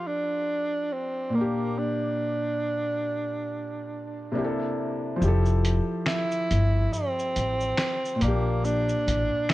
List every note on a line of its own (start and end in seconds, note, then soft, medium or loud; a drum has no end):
0.00 1.29 F3 medium
0.00 1.32 G4 soft
0.00 1.34 A4 medium
0.00 1.31 E5 medium
0.07 0.94 D4 loud
0.92 1.37 C4 medium
1.30 4.28 A#2 medium
1.30 4.30 A#3 medium
1.35 1.80 A#3 medium
1.35 4.32 D4 medium
1.41 4.34 G4 medium
1.78 4.35 D4 medium
4.32 5.19 C3 medium
4.32 5.20 A#3 medium
4.32 5.21 D4 medium
4.36 5.19 E4 medium
4.36 4.44 G4 medium
4.44 5.25 A4 medium
5.16 8.14 F3 medium
5.16 8.16 E4 medium
5.22 5.78 F1 loud
5.22 8.18 G4 medium
5.22 shaker medium
5.27 8.20 A4 medium
5.46 shaker soft
5.65 closed hi-hat medium
5.65 shaker soft
6.06 6.94 E4 loud
6.06 finger snap medium
6.06 snare loud
6.06 shaker medium
6.31 shaker soft
6.51 6.86 G1 medium
6.51 closed hi-hat medium
6.51 shaker soft
6.93 8.23 C4 loud
6.93 shaker medium
7.19 shaker soft
7.36 7.71 A1 medium
7.36 closed hi-hat medium
7.36 shaker soft
7.60 shaker soft
7.77 finger snap medium
7.77 snare loud
7.77 shaker medium
8.05 shaker soft
8.15 9.54 A#2 medium
8.20 8.92 A#1 loud
8.20 9.54 A#3 medium
8.20 8.66 A#3 medium
8.20 closed hi-hat medium
8.20 shaker soft
8.24 9.54 D4 medium
8.24 9.54 G4 medium
8.65 9.52 D4 loud
8.65 shaker medium
8.89 shaker medium
9.07 9.28 A1 medium
9.07 closed hi-hat medium
9.07 shaker medium
9.49 9.54 E4 loud
9.49 finger snap medium
9.49 snare loud